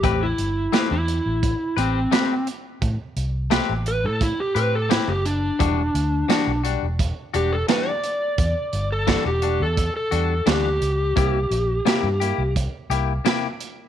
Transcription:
<<
  \new Staff \with { instrumentName = "Electric slide guitar" } { \time 4/4 \key e \minor \tempo 4 = 86 g'16 e'4 e'4~ e'16 c'4 r8 | r4. b'16 a'16 e'16 g'16 b'16 a'16 e'16 g'16 d'8~ | d'4. r4 g'16 a'16 b'16 d''8.~ | d''8. a'8 g'8 a'8 a'8. g'4~ |
g'2 r2 | }
  \new Staff \with { instrumentName = "Clean electric guitar" } { \time 4/4 \key e \minor <a c' g' b'>8 r8 <a c' g' b'>8 r4 <c' g' b'>8 <a c' g' b'>8 r8 | r4 <a c' g' b'>8 r4 <c' g' b'>8 <a c' g' b'>8 r8 | <e g d' fis'>8 r8 <e g d' fis'>8 <g d' fis'>8 r8 <g d' fis'>8 <e g d' fis'>8 r8 | r4 <e g d' fis'>8 <g d' fis'>8 r8 <g d' fis'>8 <e g d' fis'>8 r8 |
<c bes e' g'>8 r8 <c bes e' g'>8 <bes e' g'>8 r8 <bes e' g'>8 <c bes e' g'>8 r8 | }
  \new Staff \with { instrumentName = "Fingered electric bass" } { \clef bass \time 4/4 \key e \minor a,,8 g,,8 r16 e,8 a,,8 r16 a,,8 r4 | a,16 r16 c,8. a,,8 a,8 r16 a,8. fis,,8. | e,,8 d,8 r16 b,,8 e,,8 r16 e,,8 r4 | e,16 r16 g,,8. e,,8 e,8 r16 e,8 d,8 cis,8 |
c,8 bes,,8 r16 g,8 c,8 r16 c,8 r4 | }
  \new DrumStaff \with { instrumentName = "Drums" } \drummode { \time 4/4 <hh bd>8 hh8 <hh sn>8 hh8 <hh bd>8 hh8 <hh sn>8 hh8 | <hh bd>8 hh8 <hh sn>8 hh8 <hh bd>8 hh8 <hh sn>8 hh8 | <hh bd>8 hh8 <hh sn>8 hh8 <hh bd>8 hh8 <hh sn>8 hh8 | <hh bd>8 hh8 <hh bd sn>8 hh8 <hh bd>8 hh8 <hh sn>8 hh8 |
<hh bd>8 hh8 <hh sn>8 hh8 <hh bd>8 hh8 <hh sn>8 hh8 | }
>>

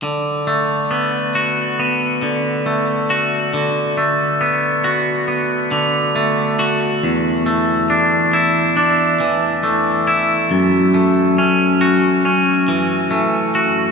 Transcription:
\new Staff \with { instrumentName = "Clean electric guitar" } { \time 4/4 \key d \major \tempo 4 = 69 d8 a8 b8 fis'8 b8 d8 a8 fis'8 | d8 a8 b8 fis'8 b8 d8 a8 fis'8 | e,8 a8 d'8 e'8 d'8 e8 a8 e'8 | fis,8 a8 cis'8 fis'8 cis'8 e8 a8 fis'8 | }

